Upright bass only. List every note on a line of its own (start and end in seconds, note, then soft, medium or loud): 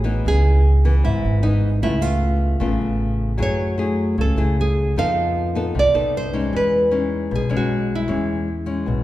0.00 0.21 A1 medium
0.26 1.00 C#2 medium
1.06 1.23 G#1 medium
1.25 1.79 G#1 medium
1.82 2.56 C#2 medium
2.60 2.79 A1 medium
2.81 3.35 A1 medium
3.40 4.14 F#2 medium
4.17 4.36 C#2 medium
4.36 4.91 C#2 medium
4.96 5.70 F2 medium
5.75 5.92 C2 medium
5.94 6.49 C2 medium
6.53 7.27 E2 medium
7.31 7.49 B1 medium
7.50 8.05 B1 medium
8.10 8.83 E2 medium
8.88 9.04 B1 medium